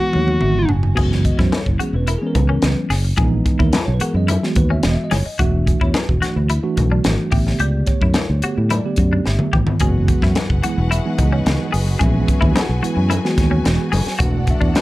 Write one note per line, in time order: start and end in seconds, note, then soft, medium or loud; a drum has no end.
0.00 0.65 E3 medium
0.00 0.65 G#3 medium
0.00 0.65 B3 medium
0.00 0.65 F#4 medium
0.00 0.70 F#4 medium
0.00 0.72 F#5 medium
0.13 0.36 D#2 medium
0.13 0.40 C#5 medium
0.13 high tom medium
0.28 high tom medium
0.41 0.67 G#1 medium
0.41 0.67 E5 medium
0.41 mid tom medium
0.69 0.95 F#1 medium
0.69 0.95 G#5 medium
0.69 floor tom medium
0.83 floor tom medium
0.95 1.30 F#1 loud
0.95 1.52 E3 medium
0.95 1.53 G#3 medium
0.95 1.53 B3 medium
0.95 1.53 F#4 medium
0.95 1.11 G#4 medium
0.95 kick medium
0.95 crash medium
0.95 muted conga soft
1.12 snare soft
1.25 1.39 D#5 medium
1.25 kick medium
1.25 closed hi-hat medium
1.39 1.49 F#2 medium
1.39 1.53 E4 medium
1.39 1.53 C5 medium
1.39 kick medium
1.39 snare soft
1.52 1.68 C#5 medium
1.52 snare loud
1.52 closed hi-hat medium
1.52 high conga medium
1.66 1.77 F#1 medium
1.66 1.81 E4 soft
1.66 kick medium
1.79 2.08 E3 medium
1.79 2.08 G#3 soft
1.79 2.08 B3 medium
1.79 2.08 C#4 medium
1.79 1.94 F#4 medium
1.79 1.94 G#4 medium
1.79 closed hi-hat medium
1.79 muted conga soft
1.93 2.15 E1 medium
1.93 2.08 B4 medium
2.07 2.22 E4 medium
2.07 2.18 A#4 medium
2.07 closed hi-hat medium
2.07 muted conga soft
2.18 2.87 E3 medium
2.18 2.87 G#3 medium
2.18 2.87 B3 medium
2.18 2.27 G#4 medium
2.23 2.88 C#4 medium
2.27 2.36 A#4 medium
2.35 2.57 C#2 medium
2.35 2.49 B4 medium
2.35 kick medium
2.35 closed hi-hat medium
2.35 muted conga soft
2.35 high conga medium
2.49 2.63 C#4 medium
2.49 2.63 A#4 medium
2.62 2.74 C#2 medium
2.62 2.79 B4 medium
2.62 snare medium
2.62 closed hi-hat medium
2.62 high conga medium
2.90 3.12 F#1 medium
2.90 3.04 G#4 medium
2.90 snare soft
2.90 open hi-hat medium
3.17 3.40 A#1 medium
3.17 3.74 E3 medium
3.17 3.74 G#3 medium
3.17 3.74 B3 medium
3.17 3.75 D#4 medium
3.17 3.32 G#4 medium
3.17 kick loud
3.17 closed hi-hat medium
3.17 muted conga soft
3.46 kick medium
3.46 closed hi-hat medium
3.59 3.71 D#2 medium
3.59 3.74 E4 medium
3.59 3.74 A#4 medium
3.59 kick medium
3.73 3.84 B4 medium
3.73 snare loud
3.73 closed hi-hat medium
3.73 high conga medium
3.86 3.98 B1 medium
3.86 3.93 C#5 medium
3.94 4.02 B4 medium
3.99 4.29 E3 medium
3.99 4.29 G#3 medium
3.99 4.29 B3 medium
3.99 4.15 F#4 medium
3.99 4.30 G#4 medium
3.99 4.15 A#4 medium
3.99 closed hi-hat medium
3.99 muted conga soft
4.14 4.36 F#2 medium
4.14 4.29 D#5 medium
4.28 4.43 E4 medium
4.28 4.43 E5 loud
4.28 closed hi-hat medium
4.28 muted conga soft
4.28 high conga medium
4.42 5.08 E3 medium
4.42 5.09 G#3 medium
4.42 5.09 B3 medium
4.42 5.09 F#4 medium
4.42 4.57 G#4 medium
4.42 snare soft
4.55 4.78 D#2 medium
4.55 4.71 B4 medium
4.55 kick medium
4.55 closed hi-hat medium
4.55 muted conga soft
4.70 4.85 C#4 medium
4.70 4.84 E5 medium
4.83 4.95 E1 loud
4.83 4.94 D#5 medium
4.83 snare loud
4.83 closed hi-hat medium
4.94 5.03 E5 medium
5.04 5.12 D#5 medium
5.11 5.23 F#1 medium
5.11 5.26 G#4 medium
5.11 5.25 C#5 medium
5.11 snare soft
5.11 open hi-hat medium
5.11 high conga medium
5.26 5.39 D#5 medium
5.39 5.72 E1 loud
5.39 5.96 E3 medium
5.39 5.96 A3 medium
5.39 5.96 D4 medium
5.39 5.53 F#4 medium
5.39 5.96 F#4 medium
5.39 5.79 E5 medium
5.39 kick loud
5.39 closed hi-hat medium
5.39 muted conga soft
5.67 kick medium
5.67 closed hi-hat medium
5.81 5.92 E2 medium
5.81 5.95 E4 medium
5.81 5.95 C#5 medium
5.81 kick medium
5.94 6.09 B4 medium
5.94 snare loud
5.94 closed hi-hat medium
5.94 high conga medium
6.09 6.19 E1 medium
6.09 6.18 F#4 medium
6.09 kick medium
6.22 6.50 E3 medium
6.22 6.50 A3 medium
6.22 6.51 D4 medium
6.22 6.36 F#4 medium
6.22 6.51 F#4 medium
6.22 snare soft
6.22 closed hi-hat medium
6.22 muted conga soft
6.36 6.58 D2 medium
6.50 6.64 E4 medium
6.50 closed hi-hat medium
6.50 muted conga soft
6.63 7.29 E3 medium
6.63 7.29 A3 medium
6.63 7.29 D4 medium
6.63 7.29 F#4 loud
6.77 6.99 B1 medium
6.77 kick medium
6.77 closed hi-hat medium
6.77 muted conga soft
6.77 high conga medium
6.92 7.06 D4 medium
7.04 7.16 G#1 medium
7.04 snare medium
7.04 closed hi-hat medium
7.04 high conga medium
7.31 7.54 A1 medium
7.31 8.21 D3 medium
7.31 8.22 A3 medium
7.31 8.22 B3 medium
7.31 7.46 G4 medium
7.31 8.21 G4 medium
7.31 7.59 E5 medium
7.31 kick medium
7.31 open hi-hat medium
7.47 snare soft
7.60 7.81 C#2 medium
7.60 7.74 G4 medium
7.60 7.88 D5 medium
7.60 closed hi-hat medium
7.60 muted conga soft
7.86 8.66 C#5 medium
7.86 kick medium
7.86 closed hi-hat medium
8.02 8.12 F#2 medium
8.02 8.16 E4 medium
8.02 kick medium
8.14 snare loud
8.14 closed hi-hat medium
8.14 high conga medium
8.30 8.40 D2 medium
8.42 8.71 D3 medium
8.42 8.71 A3 medium
8.42 8.71 B3 medium
8.42 8.58 F#4 medium
8.42 8.71 G4 medium
8.42 closed hi-hat medium
8.42 muted conga soft
8.58 8.79 A2 medium
8.70 8.85 E4 medium
8.70 9.23 D5 medium
8.70 closed hi-hat medium
8.70 muted conga soft
8.70 high conga medium
8.85 9.50 D3 medium
8.85 9.50 A3 medium
8.85 9.50 B3 medium
8.85 9.50 G4 medium
8.96 9.19 F#2 medium
8.96 kick medium
8.96 closed hi-hat medium
8.96 muted conga soft
9.13 9.27 D4 medium
9.26 9.37 G1 medium
9.26 9.54 E5 medium
9.26 snare medium
9.39 mid tom medium
9.39 high conga soft
9.53 9.64 A1 medium
9.53 9.67 G4 medium
9.53 kick medium
9.53 low conga medium
9.67 muted fingered electric bass stroke soft
9.67 floor tom medium
9.67 low conga medium
9.79 10.13 F#1 loud
9.79 10.37 E3 medium
9.79 14.16 F#3 medium
9.79 10.37 G#3 medium
9.79 10.37 B3 medium
9.79 14.81 F#4 medium
9.79 10.37 F#4 medium
9.79 14.16 G#4 medium
9.79 9.95 G#4 medium
9.79 14.16 B4 medium
9.79 11.98 F#5 medium
9.79 kick loud
9.79 closed hi-hat medium
9.79 muted conga soft
10.08 kick medium
10.08 closed hi-hat medium
10.22 10.33 F#2 medium
10.22 10.37 E4 medium
10.22 kick medium
10.22 snare soft
10.35 snare loud
10.35 closed hi-hat medium
10.35 high conga medium
10.50 10.60 F#1 medium
10.50 kick medium
10.63 10.92 E3 medium
10.63 10.92 G#3 medium
10.63 10.92 B3 medium
10.63 10.92 E4 medium
10.63 10.78 F#4 medium
10.63 10.90 F#5 medium
10.63 closed hi-hat medium
10.63 muted conga soft
10.78 10.99 E1 medium
10.91 11.05 E4 medium
10.91 11.18 E5 medium
10.91 closed hi-hat medium
10.91 muted conga soft
11.05 11.70 E3 medium
11.05 11.70 G#3 medium
11.05 11.70 B3 medium
11.05 11.70 D#4 medium
11.18 11.40 C#2 medium
11.18 11.97 D#5 medium
11.18 kick medium
11.18 closed hi-hat medium
11.18 muted conga soft
11.18 high conga medium
11.32 11.46 C#4 medium
11.46 11.57 C#2 loud
11.46 snare loud
11.46 closed hi-hat medium
11.46 high conga medium
11.72 11.95 F#1 medium
11.72 11.87 G#4 medium
11.72 open hi-hat medium
11.99 12.22 A#1 medium
11.99 12.57 E3 medium
11.99 12.56 G#3 medium
11.99 12.56 B3 medium
11.99 12.56 C#4 medium
11.99 12.14 G#4 medium
11.99 12.53 E5 medium
11.99 14.18 G#5 medium
11.99 kick loud
11.99 closed hi-hat medium
11.99 muted conga soft
12.28 kick medium
12.28 closed hi-hat medium
12.41 12.53 D#2 medium
12.41 12.55 E4 medium
12.41 kick medium
12.56 12.83 F#5 medium
12.56 snare loud
12.56 closed hi-hat medium
12.56 high conga medium
12.69 12.80 B1 medium
12.82 13.11 E3 medium
12.82 13.11 G#3 medium
12.82 13.11 B3 medium
12.82 13.11 E4 medium
12.82 12.97 F#4 medium
12.82 muted fingered electric bass stroke soft
12.82 closed hi-hat medium
12.82 muted conga soft
12.97 13.18 F#2 medium
13.10 13.24 E4 medium
13.10 closed hi-hat medium
13.10 muted conga soft
13.10 high conga medium
13.25 13.90 E3 medium
13.25 13.90 G#3 medium
13.25 13.90 B3 medium
13.25 13.90 F#4 medium
13.25 snare soft
13.38 13.59 D#2 medium
13.38 kick medium
13.38 snare soft
13.38 closed hi-hat medium
13.38 muted conga soft
13.51 13.65 C#4 medium
13.65 13.77 E1 loud
13.65 snare medium
13.65 closed hi-hat medium
13.92 14.04 F#1 medium
13.92 14.06 G#4 medium
13.92 14.20 G#5 loud
13.92 open hi-hat medium
13.92 high conga medium
14.06 muted fingered electric bass stroke soft
14.06 snare soft
14.19 14.52 E1 loud
14.19 14.81 E3 medium
14.19 14.77 E3 medium
14.19 14.77 A3 medium
14.19 14.77 D4 medium
14.19 14.33 F#4 medium
14.19 14.77 F#4 medium
14.19 14.81 A4 medium
14.19 14.81 D5 medium
14.19 14.81 F#5 medium
14.19 kick loud
14.19 closed hi-hat medium
14.19 muted conga soft
14.23 14.49 F#5 medium
14.47 14.81 E5 medium
14.47 kick medium
14.47 closed hi-hat medium
14.61 14.72 E2 medium
14.61 14.75 D4 medium
14.61 kick medium
14.75 snare loud
14.75 closed hi-hat medium
14.75 high conga medium